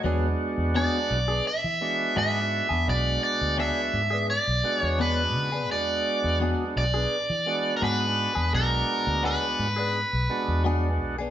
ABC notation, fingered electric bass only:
X:1
M:4/4
L:1/16
Q:1/4=85
K:Emix
V:1 name="Fingered electric bass" clef=bass
E,,2 z E,,2 z B,,,2 z E,3 G,,3 E,, | B,,,2 z D,,2 z G,,3 B,,, z E,,3 C,2 | E,,2 z E,,2 z B,,,2 z E,3 G,,3 E,, | B,,,2 z D,,2 z G,,3 B,,, z E,,3 B,,,2 |]